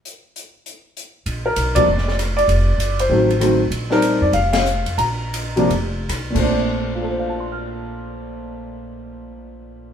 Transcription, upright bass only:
X:1
M:4/4
L:1/8
Q:"Swing" 1/4=190
K:Bb
V:1 name="Upright bass" clef=bass
z8 | B,,,2 _C,,2 F,,,4 | F,,,2 _G,,,2 A,,,4 | B,,,3 F,, F,,,3 F,, |
B,,,4 F,,,2 _C,, B,,,- | B,,,8- | B,,,8 |]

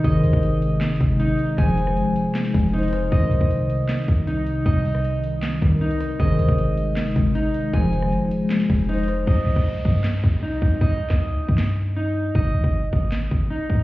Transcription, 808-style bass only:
X:1
M:4/4
L:1/16
Q:1/4=156
K:Cm
V:1 name="808-style bass" clef=bass
A,,,2 C,, A,,,4- A,,, G,,,2 A,,,4 z2 | F,,,4 G,,, F,,, z4 F,,,6 | C,,2 C,, C,,4 z3 C,,6 | C,,8- C,,2 C,,4 z2 |
A,,,2 C,, A,,,4- A,,, G,,,2 A,,,4 z2 | F,,,4 G,,, F,,, z4 F,,,6 | C,,2 C,, C,,3 G,,4 C,,4 C,,2 | C,,3 C,,2 D,, C,, G,,8- G,, |
A,,,2 C,, A,,,2 G,,, A,,,4 A,,,2 z2 A,,2 |]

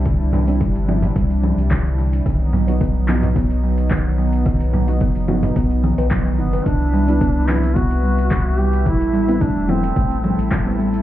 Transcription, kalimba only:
X:1
M:4/4
L:1/16
Q:1/4=109
K:Clyd
V:1 name="Kalimba" clef=bass
D,2 E, z G, z C2 G, z E, z D,2 E,2 | ^D,2 F, z B, z ^D2 B, z F, z D,2 F,2 | ^D,2 F, z B, z ^D2 B, z D, B F, D, D B | E,2 G, z B, z C2 B, z G, z E,2 G,2 |
E,2 G, z A, z C2 A, z G, z E,2 G,2 |]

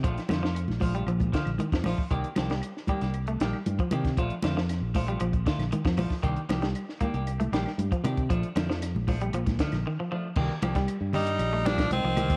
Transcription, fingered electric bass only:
X:1
M:4/4
L:1/16
Q:1/4=116
K:Cdor
V:1 name="Fingered electric bass" clef=bass
B,,, z F,,3 B,,,3 B,,,2 z B,,, z F,, B,,, z | C,, z C,,2 z3 C,,3 B,,, z G,, z C,2 | B,,, z F,,3 B,,,3 B,,,2 z B,,, z F,, B,,, z | C,, z C,,2 z3 C,,3 B,,, z G,, z C,2 |
B,,, z F,,3 B,,,3 B,,,2 z B,,, z4 | C,, z C,,2 z G,,3 B,,,4 C,, C,,2 E,, |]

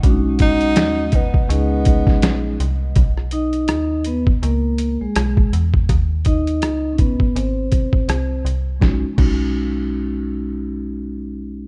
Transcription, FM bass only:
X:1
M:4/4
L:1/16
Q:"Swing 16ths" 1/4=82
K:B
V:1 name="FM bass" clef=bass
B,,,4 D,,4 C,,4 A,,,2 =C,,2 | B,,,4 D,,4 C,,3 B,,, B,,,2 E,,2 | D,,4 C,,4 G,,,3 ^B,,, B,,,2 B,,,2 | B,,, z B,,,12- B,,,2 |]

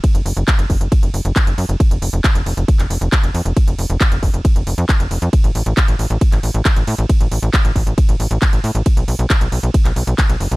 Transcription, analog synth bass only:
X:1
M:4/4
L:1/16
Q:1/4=136
K:Bdor
V:1 name="Analog synth bass" clef=bass
z F,,, F,,, F,,, z F,,, F,,, F,,, z F,,, F,,, F,,, z F,,, F,, F,,, | z ^E,,, E,,, E,,, z E,,, E,,, E,,, z E,,, E,,, E,,, z E,,, ^E,, E,,, | z ^E,,, E,,, E,,, z E,,, E,,, E,,, z E,,, E,,, ^E,, z E,,, E,,, E,, | z A,,, A,,, A,,, z A,,, A,,, A,,, z A,,, A,,, A,,, z A,,, A,, A,,, |
z A,,, A,,, A,,, z A,,, A,,, A,,, z A,,, A,,, A,,, z A,,, A,, A,,, | z B,,, B,,, B,,, z B,,, B,,, B,,, z B,,, B,,, B,,, z B,,, F,,, B,,, |]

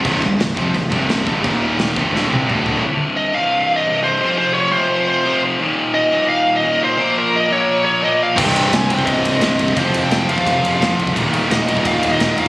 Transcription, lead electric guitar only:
X:1
M:4/4
L:1/16
Q:1/4=173
K:Cm
V:1 name="Lead electric guitar"
z16 | z16 | z4 e2 f4- f e3 c2- | c2 c2 _d2 c4 c4 z2 |
z4 e4 f3 e3 c2- | c2 B2 e2 _d4 d2 e2 f2 | g4 a2 g2 e4 e4 | c3 g3 f8 z2 |
z4 e4 f3 e3 f2 |]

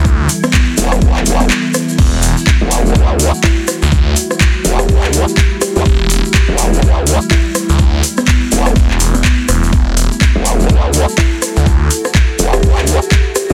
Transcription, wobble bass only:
X:1
M:4/4
L:1/16
Q:"Swing 16ths" 1/4=124
K:Em
V:1 name="Wobble bass" clef=bass
z6 E,,,2 E,,,2 E,,,2 z4 | z4 z E,,,3 D,,3 z4 z | z6 E,,,2 D,,3 z4 E,, | z4 z E,,,3 D,,3 z4 z |
z6 E,,,2 z8 | z4 z E,,,3 D,,3 z4 z | z6 E,,,2 D,,3 z4 z |]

